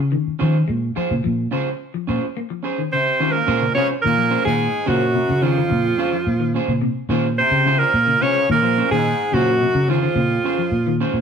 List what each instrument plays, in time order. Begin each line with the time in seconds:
Already playing: fingered electric bass C#3
0.12 clean electric guitar D#3
0.28 muted fingered electric bass stroke
0.39 fingered electric bass D#3, clean electric guitar F3 C#4 F4 G#4 C5
0.68 fingered electric bass A#2, clean electric guitar G#3
0.96 clean electric guitar F3 F4 G#4 C5, muted fingered electric bass stroke
1.11 fingered electric bass A#2, clean electric guitar C#3
1.24 fingered electric bass A#2, clean electric guitar F3
1.51 clean electric guitar C#3 C#4 F4 G#4 C5
1.94 clean electric guitar F3
2.07 fingered electric bass A#2, clean electric guitar C#4 F4 G#4 C5
2.37 clean electric guitar A#3
2.50 clean electric guitar F3
2.63 clean electric guitar C#4 G#4 C5
2.78 clean electric guitar D#3
2.92 trombone section C3, clean electric guitar C#3, tenor saxophone C4, alto saxophone C5
3.20 clean electric guitar D#3 C#4 F4 G#4 C5
3.32 trombone section A#2, tenor saxophone A#3, alto saxophone A#4
3.47 fingered electric bass A#2, clean electric guitar C#4 F4 G#4 C5
3.61 clean electric guitar C#3
3.75 clean electric guitar C3 C#4 F4 G#4 C5, trombone section C#3, tenor saxophone C#4, alto saxophone C#5
4.02 trombone section A#2, fingered electric bass A#2, clean electric guitar D#3, alto saxophone A#4
4.06 tenor saxophone A#3
4.17 clean electric guitar F3
4.31 clean electric guitar C#4 F4 G#4 C5
4.45 trombone section G#2, fingered electric bass A#2, clean electric guitar D#3, tenor saxophone G#3, alto saxophone G#4
4.86 trombone section F#2, fingered electric bass A#2, clean electric guitar C#3 C#4 F4 G#4 C5, alto saxophone F#4
4.90 tenor saxophone F#3
5.14 clean electric guitar C3
5.28 clean electric guitar C#3, fingered electric bass C#3
5.42 trombone section F2, clean electric guitar D#3 C#4 F4 G#4 C5, tenor saxophone F3, alto saxophone F4
5.56 clean electric guitar D#3
5.70 fingered electric bass A#2, clean electric guitar C#3
5.98 clean electric guitar C#4 F4 G#4 C5
6.13 clean electric guitar F3
6.27 fingered electric bass A#2
6.40 clean electric guitar D#3
6.54 clean electric guitar C#4 F4 G#4 C5
6.68 fingered electric bass A#2, clean electric guitar C#3
6.82 clean electric guitar C3
7.09 fingered electric bass A#2, clean electric guitar D#3 C#4 F4 G#4 C5
7.38 trombone section C3, tenor saxophone C4, alto saxophone C5
7.51 fingered electric bass C#3
7.66 clean electric guitar C#3 F4 G#4 C5, muted clean electric guitar stroke
7.79 trombone section A#2, tenor saxophone A#3, clean electric guitar F4 G#4 C5, alto saxophone A#4
7.94 fingered electric bass A#2
8.07 clean electric guitar C#3
8.20 clean electric guitar C3 C#4 F4 G#4 C5, trombone section C#3, tenor saxophone C#4, alto saxophone C#5
8.49 trombone section A#2, fingered electric bass A#2, clean electric guitar D#3, tenor saxophone A#3, alto saxophone A#4
8.63 clean electric guitar F3 F4 G#4 C5
8.78 clean electric guitar C#4 G#4 C5
8.91 trombone section G#2, fingered electric bass A#2, clean electric guitar D#3, tenor saxophone G#3, alto saxophone G#4
9.32 trombone section F#2, fingered electric bass A#2, clean electric guitar C#3 C#4 F4 G#4 C5, tenor saxophone F#3, alto saxophone F#4
9.61 clean electric guitar C3
9.75 fingered electric bass C#3, clean electric guitar C#3
9.88 trombone section F2, clean electric guitar D#3 C#4 F4 G#4 C5, tenor saxophone F3, alto saxophone F4
10.02 clean electric guitar D#3 F4 G#4 C5
10.16 fingered electric bass A#2, clean electric guitar C#3
10.44 clean electric guitar C#4 G#4 C5, muted clean electric guitar stroke
10.58 clean electric guitar F3
10.72 fingered electric bass A#2
10.87 clean electric guitar D#3
11.00 clean electric guitar C#4 F4 G#4 C5
11.14 fingered electric bass A#2